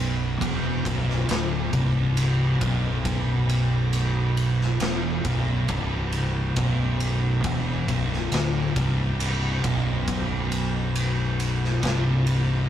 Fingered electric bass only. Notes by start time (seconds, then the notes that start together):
Already playing: B0
0.41 E1
0.85 B0
1.28 D1
1.73 C1
2.61 B0
4.81 E1
5.24 B0
5.69 C1
6.56 B0
7.44 E1
7.89 B0
8.32 D1
8.76 C1
9.64 B0
11.83 C1